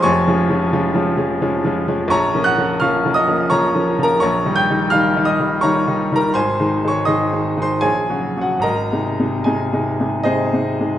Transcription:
<<
  \new Staff \with { instrumentName = "Grand piano" } { \time 3/4 \key des \major \tempo 4 = 85 <des'' aes'' des'''>2 r4 | \key aes \mixolydian <des'' bes'' des'''>8 <ges'' ges'''>8 <f'' des''' f'''>8 <ees'' ees'''>8 <des'' bes'' des'''>8. <bes' bes''>16 | <des'' bes'' des'''>8 <g'' g'''>8 <f'' f'''>8 <ees'' ees'''>8 <des'' bes'' des'''>8. <bes' bes''>16 | <c'' aes'' c'''>8. <des'' des'''>16 <ees'' c''' ees'''>8. <c'' c'''>16 <aes' des'' aes''>8. <ges' ges''>16 |
<bes' ees'' bes''>4 <aes' ees'' aes''>4 <aes' c'' ees''>4 | }
  \new Staff \with { instrumentName = "Grand piano" } { \clef bass \time 3/4 \key des \major \tuplet 3/2 { <f,, f,>8 <f aes des'>8 <f aes des'>8 <f aes des'>8 <f aes des'>8 <f aes des'>8 <f aes des'>8 <f aes des'>8 <f aes des'>8 } | \key aes \mixolydian \tuplet 3/2 { bes,,8 <f bes des'>8 <f bes des'>8 <f bes des'>8 <f bes des'>8 <f bes des'>8 <f bes des'>8 <f bes des'>8 <f bes des'>8 } | \tuplet 3/2 { bes,,8 <ees g ees'>8 <ees g ees'>8 <ees g ees'>8 <ees g ees'>8 <ees g ees'>8 <ees g ees'>8 <ees g ees'>8 <ees g ees'>8 } | \tuplet 3/2 { aes,,8 <ees aes ees'>8 <ees aes ees'>8 <ees aes ees'>8 <ees aes ees'>8 <ees aes ees'>8 bes,,8 <des ges ges'>8 <des ges ges'>8 } |
\tuplet 3/2 { aes,,8 <c aes ees'>8 <c aes ees'>8 <c aes ees'>8 <c aes ees'>8 <c aes ees'>8 <c aes ees'>8 <c aes ees'>8 <c aes ees'>8 } | }
>>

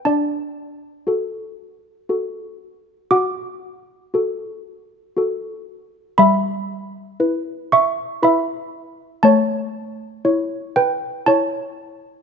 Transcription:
\new Staff \with { instrumentName = "Handbells" } { \time 3/4 \key d \major \tempo 4 = 59 << { <d'' a''>2. | <fis'' d'''>2~ <fis'' d'''>8 r8 | <e'' b''>4. <e'' cis'''>8 <e'' b''>4 | <cis'' a''>4. <b' g''>8 <cis'' a''>4 | } \\ { d'4 <fis' a'>4 <fis' a'>4 | fis'4 <fis' a'>4 <fis' a'>4 | g4 <e' b'>4 <e' b'>4 | a4 <e' cis''>4 e'4 | } >> }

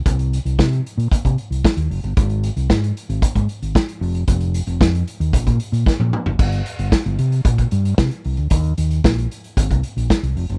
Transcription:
<<
  \new Staff \with { instrumentName = "Fingered electric bass" } { \clef bass \time 4/4 \key c \minor \tempo 4 = 114 c,8. c,16 c8 r16 bes,16 r16 c16 r16 c,16 r16 ees,16 ges,,16 g,,16 | aes,,8. c,16 aes,8 r16 aes,,16 r16 aes,16 r16 aes,,16 r8 f,,8 | f,,8. f,,16 f,8 r16 ees,16 bes,,16 bes,16 r16 bes,16 r16 bes,16 r16 ges,,16 | g,,8 r16 g,,16 r16 g,,16 c8 bes,8 g,8 c16 r16 c,16 d,16 |
ees,8 ees,8 bes,,8 r8 aes,,16 c,16 r16 bes,,16 r16 c,16 f,,16 ges,,16 | }
  \new DrumStaff \with { instrumentName = "Drums" } \drummode { \time 4/4 <hh bd>16 hh16 hh16 hh16 <bd sn>16 hh16 hh16 hh16 <hh bd>16 <hh bd>16 hh16 hh16 <bd sn>16 hh16 hho16 hh16 | <hh bd>16 hh16 hh16 hh16 <bd sn>16 hh16 hh16 hh16 <hh bd>16 <hh bd>16 hh16 hh16 <bd sn>16 hh16 hho16 hh16 | <hh bd>16 hh16 hh16 hh16 <bd sn>16 hh16 hh16 hh16 <hh bd>16 <hh bd>16 hh16 hh16 <bd sn>16 tommh16 toml16 tomfh16 | <cymc bd>16 hh16 hh16 hh16 <bd sn>16 hh16 hh16 hh16 <hh bd>16 <hh bd>16 hh16 hh16 <bd sn>16 hh16 hho16 hh16 |
<hh bd>16 hh16 hh16 hh16 <bd sn>16 hh16 hh16 hh16 <hh bd>16 <hh bd>16 hh16 hh16 <bd sn>16 hh16 hho16 hh16 | }
>>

